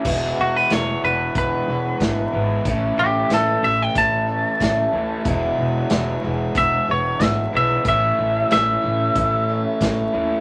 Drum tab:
CC |x-------|--------|--------|--------|
HH |--x-x-x-|x-x-x-x-|x-x-x-x-|x-x-x-x-|
SD |--o---o-|--o---o-|--o---o-|--o---o-|
BD |o---o-o-|o---o-o-|o---o-o-|o---o-o-|